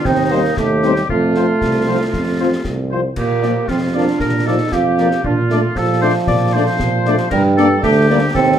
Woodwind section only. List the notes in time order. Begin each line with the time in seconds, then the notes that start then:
0.06 D#4
0.58 G4
1.09 F4
3.17 G4
3.68 F4
4.20 A#4
4.46 A4
4.73 G4
5.25 F4
5.77 A4
6.02 C5
6.28 D5
6.53 C5
7.31 A#4
7.57 A4
7.84 G4
8.35 A4